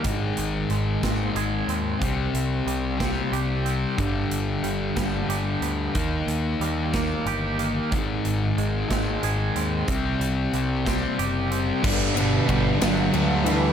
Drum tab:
CC |------|------|------|------|
RD |------|------|------|------|
HH |xxxxxx|xxxxxx|xxxxxx|xxxxxx|
SD |---o--|---o--|---o--|---o--|
BD |o--o--|o--o--|o--o--|o--o--|

CC |------|------|x-----|
RD |------|------|-xxxxx|
HH |xxxxxx|xxxxxx|------|
SD |---o--|---o--|---o--|
BD |o--o--|o--o--|o-o---|